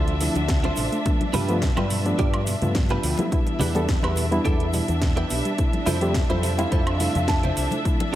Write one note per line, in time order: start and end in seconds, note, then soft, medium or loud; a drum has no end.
0.00 0.28 D2 loud
0.00 0.14 D4 loud
0.00 3.31 D4 medium
0.00 0.14 F4 loud
0.00 0.14 A4 loud
0.00 0.14 C5 loud
0.00 3.31 E5 medium
0.07 0.12 F3 medium
0.07 closed hi-hat soft
0.07 muted conga soft
0.21 0.25 C3 medium
0.21 0.34 F3 medium
0.21 0.34 A3 medium
0.21 0.35 C4 medium
0.21 0.35 E4 medium
0.21 open hi-hat loud
0.21 shaker medium
0.35 0.70 D2 medium
0.35 0.42 F3 loud
0.35 muted clean electric guitar stroke soft
0.35 closed hi-hat soft
0.35 muted conga medium
0.35 shaker soft
0.48 0.60 C3 medium
0.48 kick loud
0.48 snare loud
0.48 closed hi-hat medium
0.48 shaker soft
0.63 0.68 C4 medium
0.63 0.99 D4 medium
0.63 0.99 F4 medium
0.63 0.99 A4 medium
0.63 0.99 C5 medium
0.63 closed hi-hat soft
0.63 high conga medium
0.76 0.87 A1 medium
0.76 0.84 C3 medium
0.76 open hi-hat loud
0.76 muted conga soft
0.76 shaker loud
0.92 0.99 A3 loud
0.92 closed hi-hat soft
0.92 shaker soft
1.06 1.13 B2 medium
1.06 1.46 F3 medium
1.06 1.46 A3 medium
1.06 1.46 B3 medium
1.06 1.46 D4 medium
1.06 kick loud
1.06 closed hi-hat medium
1.06 muted conga medium
1.06 shaker soft
1.21 1.25 F3 medium
1.21 closed hi-hat soft
1.21 high conga medium
1.33 1.69 G2 loud
1.33 1.38 B2 medium
1.33 1.55 D4 loud
1.33 1.56 F4 loud
1.33 1.56 G4 loud
1.33 1.56 B4 loud
1.33 open hi-hat loud
1.33 low conga medium
1.33 shaker medium
1.49 1.61 F3 loud
1.49 1.56 F3 loud
1.49 1.61 A3 medium
1.49 1.61 B3 medium
1.49 1.61 F4 loud
1.49 closed hi-hat soft
1.49 muted conga soft
1.49 shaker medium
1.62 1.73 B2 medium
1.62 kick loud
1.62 snare loud
1.62 closed hi-hat medium
1.62 shaker soft
1.77 2.12 G2 medium
1.77 1.81 B3 medium
1.77 1.98 D4 medium
1.77 1.98 F4 medium
1.77 1.98 G4 medium
1.77 1.98 B4 medium
1.77 closed hi-hat soft
1.77 muted conga medium
1.77 high conga medium
1.77 high woodblock medium
1.90 1.98 B2 medium
1.90 open hi-hat loud
1.90 shaker medium
2.05 2.25 F3 loud
2.05 2.12 G3 loud
2.05 2.25 A3 medium
2.05 2.26 B3 medium
2.05 2.26 D4 loud
2.05 closed hi-hat soft
2.05 shaker medium
2.18 2.54 G2 loud
2.18 2.26 B2 medium
2.18 2.40 D4 loud
2.18 2.41 F4 medium
2.18 2.41 G4 medium
2.18 2.41 D5 loud
2.18 kick loud
2.18 closed hi-hat medium
2.18 muted conga medium
2.18 shaker soft
2.34 2.38 F3 medium
2.34 closed hi-hat soft
2.34 high woodblock medium
2.47 2.52 B2 medium
2.47 open hi-hat loud
2.47 muted conga medium
2.47 shaker medium
2.62 2.97 G2 loud
2.62 3.15 F3 medium
2.62 2.69 F3 loud
2.62 3.15 A3 medium
2.62 3.15 B3 medium
2.62 3.16 F4 loud
2.62 muted clean electric guitar stroke soft
2.62 closed hi-hat soft
2.62 low conga loud
2.62 shaker medium
2.75 2.86 B2 medium
2.75 kick loud
2.75 snare loud
2.75 closed hi-hat medium
2.75 shaker soft
2.89 2.94 B3 medium
2.89 3.25 D4 medium
2.89 3.26 F4 medium
2.89 3.26 G4 medium
2.89 3.26 B4 loud
2.89 closed hi-hat soft
2.89 muted conga soft
2.89 low conga medium
3.03 3.14 D2 medium
3.03 3.11 B2 medium
3.03 open hi-hat loud
3.03 shaker loud
3.17 3.29 F3 medium
3.17 3.25 G3 loud
3.17 3.29 A3 medium
3.17 3.29 B3 medium
3.17 3.29 E4 medium
3.17 closed hi-hat soft
3.17 muted conga medium
3.17 high conga medium
3.17 shaker soft
3.32 3.40 B2 medium
3.32 3.72 G3 medium
3.32 3.72 B3 medium
3.32 8.15 D4 medium
3.32 3.72 D4 medium
3.32 3.72 E4 medium
3.32 8.15 E5 medium
3.32 kick loud
3.32 closed hi-hat medium
3.32 shaker soft
3.47 3.51 E3 medium
3.47 closed hi-hat soft
3.47 muted conga medium
3.59 3.96 E2 loud
3.59 3.65 B2 medium
3.59 3.82 D4 loud
3.59 3.82 E4 medium
3.59 3.82 G4 loud
3.59 3.82 B4 loud
3.59 open hi-hat loud
3.59 low conga medium
3.59 shaker medium
3.75 3.82 E3 loud
3.75 3.87 G3 loud
3.75 3.88 B3 medium
3.75 3.88 D4 medium
3.75 3.88 A4 loud
3.75 closed hi-hat soft
3.75 muted conga medium
3.75 shaker medium
3.88 4.00 B2 medium
3.88 kick loud
3.88 snare loud
3.88 closed hi-hat medium
3.88 shaker soft
4.02 4.38 E2 medium
4.02 4.08 B3 medium
4.02 4.24 D4 medium
4.02 4.24 E4 medium
4.02 4.25 G4 medium
4.02 4.25 B4 medium
4.02 closed hi-hat soft
4.02 high conga medium
4.02 high woodblock medium
4.16 4.25 B2 medium
4.16 open hi-hat loud
4.16 muted conga medium
4.16 high conga medium
4.16 shaker medium
4.31 4.52 G3 loud
4.31 4.39 G3 loud
4.31 4.52 B3 medium
4.31 4.52 D4 medium
4.31 4.52 E4 loud
4.31 closed hi-hat soft
4.31 shaker medium
4.45 4.80 E2 loud
4.45 4.53 B2 medium
4.45 4.67 D4 loud
4.45 4.67 E4 medium
4.45 4.67 G4 loud
4.45 4.67 A4 loud
4.45 kick loud
4.45 closed hi-hat medium
4.45 muted conga medium
4.45 shaker soft
4.60 4.64 E3 medium
4.60 closed hi-hat soft
4.73 4.78 B2 medium
4.73 4.87 G3 medium
4.73 4.87 B3 medium
4.73 4.87 D4 medium
4.73 4.88 E4 medium
4.73 open hi-hat loud
4.73 shaker loud
4.88 5.23 E2 loud
4.88 4.95 E3 loud
4.88 muted clean electric guitar stroke soft
4.88 closed hi-hat soft
4.88 muted conga soft
4.88 shaker medium
5.02 5.13 B2 medium
5.02 kick loud
5.02 snare loud
5.02 closed hi-hat medium
5.02 shaker soft
5.16 5.21 B3 medium
5.16 5.52 D4 medium
5.16 5.52 E4 medium
5.16 5.52 G4 medium
5.16 5.52 B4 medium
5.16 closed hi-hat soft
5.16 muted conga medium
5.16 high conga medium
5.30 5.41 B1 medium
5.30 5.37 B2 medium
5.30 open hi-hat loud
5.30 shaker medium
5.45 5.52 G3 loud
5.45 closed hi-hat soft
5.45 shaker medium
5.58 5.66 C3 medium
5.58 5.98 G3 medium
5.58 5.98 A3 medium
5.58 5.98 C4 medium
5.58 5.99 E4 medium
5.58 kick loud
5.58 closed hi-hat medium
5.58 muted conga medium
5.58 shaker soft
5.73 5.78 F3 medium
5.73 closed hi-hat soft
5.73 high conga medium
5.86 6.22 F2 loud
5.86 5.92 C3 medium
5.86 6.08 E4 loud
5.86 6.09 F4 loud
5.86 6.09 A4 loud
5.86 6.09 C5 loud
5.86 open hi-hat loud
5.86 muted conga medium
5.86 low conga medium
5.86 shaker loud
6.01 6.08 F3 loud
6.01 6.14 G3 loud
6.01 6.14 A3 medium
6.01 6.14 C4 medium
6.01 6.14 G4 loud
6.01 closed hi-hat soft
6.01 shaker medium
6.14 kick loud
6.14 snare loud
6.14 closed hi-hat medium
6.14 shaker soft
6.30 6.64 F2 medium
6.30 6.34 C4 medium
6.30 6.51 E4 medium
6.30 6.51 F4 medium
6.30 6.51 A4 medium
6.30 6.42 C5 loud
6.30 closed hi-hat soft
6.30 muted conga soft
6.30 high conga medium
6.43 6.51 C3 medium
6.43 6.57 C5 medium
6.43 open hi-hat loud
6.43 shaker loud
6.58 6.78 G3 loud
6.58 6.78 A3 medium
6.58 6.65 A3 loud
6.58 6.79 C4 medium
6.58 6.79 E4 loud
6.58 6.71 F5 medium
6.58 closed hi-hat soft
6.58 muted conga medium
6.58 shaker medium
6.72 7.07 F2 loud
6.72 6.79 C3 medium
6.72 6.93 E4 loud
6.72 6.93 F4 loud
6.72 6.94 A4 loud
6.72 6.94 C5 loud
6.72 6.98 E5 medium
6.72 kick loud
6.72 closed hi-hat medium
6.72 shaker soft
6.87 6.91 F3 medium
6.87 closed hi-hat soft
6.87 high woodblock medium
7.00 7.05 C3 medium
7.00 7.14 G3 medium
7.00 7.14 A3 medium
7.00 7.14 C4 medium
7.00 7.14 E4 medium
7.00 7.27 F5 medium
7.00 open hi-hat loud
7.00 muted conga soft
7.00 shaker loud
7.15 7.50 F2 medium
7.15 7.21 F3 loud
7.15 muted clean electric guitar stroke soft
7.15 closed hi-hat soft
7.15 low conga medium
7.15 shaker medium
7.28 7.39 C3 medium
7.28 7.81 A5 medium
7.28 kick loud
7.28 snare loud
7.28 closed hi-hat medium
7.28 muted conga medium
7.28 shaker soft
7.43 7.47 C4 medium
7.43 7.78 E4 medium
7.43 7.78 F4 medium
7.43 7.79 A4 medium
7.43 7.79 C5 medium
7.43 closed hi-hat soft
7.43 low conga loud
7.57 7.67 C2 medium
7.57 7.64 C3 medium
7.57 open hi-hat loud
7.57 shaker loud
7.71 7.78 A3 loud
7.71 closed hi-hat soft
7.71 muted conga medium
7.71 high conga medium
7.71 shaker medium
7.85 7.92 C3 medium
7.85 8.15 F3 medium
7.85 8.15 A3 medium
7.85 8.15 C4 medium
7.85 8.15 E4 medium
7.85 kick loud
7.85 closed hi-hat medium
7.85 shaker soft
8.00 8.04 F3 medium
8.00 closed hi-hat soft
8.00 muted conga medium